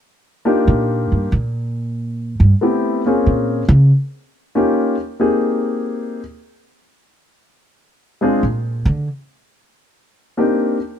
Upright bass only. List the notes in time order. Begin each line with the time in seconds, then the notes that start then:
0.67 A#2
1.12 G2
1.32 A#2
2.40 G2
3.26 A#2
3.68 C#3
8.43 A#2
8.85 D3